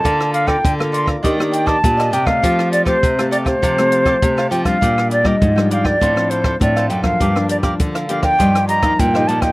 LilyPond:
<<
  \new Staff \with { instrumentName = "Flute" } { \time 4/4 \key bes \major \tempo 4 = 101 a''8 f''16 g''8. c'''16 r8. g''16 a''8. g''16 f''16~ | f''8 d''16 c''8. d''16 c''4.~ c''16 g''16 f''16~ | f''8 d''16 ees''8. f''16 d''8. c''8 d''8 g''16 f''16~ | f''8 d''16 r8. f''16 g''8. bes''8 g''8 a''16 g''16 | }
  \new Staff \with { instrumentName = "Cavaquinho" } { \time 4/4 \key bes \major <a' d'' f'' bes''>8 <a' d'' f'' bes''>16 <a' d'' f'' bes''>16 r16 <d'' f'' bes''>16 <a' d'' f'' bes''>16 <d'' f'' bes''>16 <d' g' d'' ees''>8 <d' g' d'' ees''>16 <d' g' d'' ees''>16 r16 <g' d'' ees''>16 <d' g' d'' ees''>16 <g' d'' ees''>16 | <g' a' f'' a''>8 <g' a' f'' a''>16 <g' a' f'' a''>16 r16 <g' f'' a''>16 <g' a' f'' a''>16 <g' f'' a''>16 <g' a' f'' a''>8 <g' a' f'' a''>16 <g' a' f'' a''>16 r16 <g' f'' a''>16 <g' a' f'' a''>16 <g' f'' a''>16 | <d' bes' d'' g''>8 <d' bes' d'' g''>16 <d' bes' d'' g''>16 r16 <bes' d'' g''>16 <d' bes' d'' g''>16 <bes' d'' g''>16 <d' a' c'' f''>8 <d' a' c'' f''>16 <d' a' c'' f''>16 r16 <a' c'' f''>16 <d' a' c'' f''>16 <a' c'' f''>16 | <g' bes' d'' f''>8 <g' bes' d'' f''>16 <g' bes' d'' f''>16 r16 <bes' d'' f''>16 <g' bes' d'' f''>16 <bes' d'' f''>16 <f' g' ees'' f''>8 <f' g' ees'' f''>16 <f' g' ees'' f''>16 r16 <g' ees'' f''>16 <f' g' ees'' f''>16 <g' ees'' f''>16 | }
  \new Staff \with { instrumentName = "Nylon-string guitar" } { \time 4/4 \key bes \major << { <bes f' a'>8. <bes f' a'>8 <bes f' a'>8. <bes d' g'>16 <bes d' g'>8. <bes d' g'>8 r16 <a c' g'>16~ | <a c' g'>8. <a c' g'>8 <a c' g'>4 <a c' g'>8. <a c' g'>8. <g d' f'>16~ | <g d' f'>8. <g d' f'>8 <g d' f'>8. <f c' d'>16 <f c' d'>8. <f c' d'>8 r16 <f bes d'>16~ | <f bes d'>16 <f bes d'>8 <f bes d'>8. <f bes d'>8 <f bes ees'>8. <f bes ees'>8 <f bes ees'>8. | } \\ { d4 d4 ees4 bes,4 | f4 c4 f4 c4 | bes,4 f4 a,4 a,4 | g,4 d4 g,4 g,4 | } >> }
  \new Staff \with { instrumentName = "Nylon-string guitar" } { \clef bass \time 4/4 \key bes \major d4 d4 ees4 bes,8 c8 | f4 c4 c4 c8 f8 | bes,4 aes,4 a,4 a,8 ges,8 | g,4 d4 g,4 bes,8 bes,8 | }
  \new DrumStaff \with { instrumentName = "Drums" } \drummode { \time 4/4 <hh bd>16 ss16 hh16 <bd ss>16 <hh bd>16 ss16 hh16 <bd ss>16 <hh bd>16 ss16 hh16 <bd ss>16 <hh bd>16 <hh ss>16 hh16 <bd ss>16 | <hh bd>16 ss16 hh16 <hh bd ss>16 <hh bd>16 <hh ss>16 hh16 <hh bd ss>16 <hh bd>16 <hh ss>16 hh16 <hh bd ss>16 <hh bd>16 ss16 hh16 <hh bd ss>16 | <hh bd>16 ss16 hh16 <bd ss>16 <hh bd>16 ss16 hh16 <bd ss>16 <hh bd>16 ss16 hh16 <bd ss>16 <hh bd>16 <hh ss>16 hh16 <bd ss>16 | <hh bd>16 ss16 hh16 <hh bd ss>16 <hh bd>16 <hh ss>16 hh16 <hh bd ss>16 <hh bd>16 <hh ss>16 hh16 <hh bd ss>16 <hh bd>16 ss16 hh16 <hh bd ss>16 | }
>>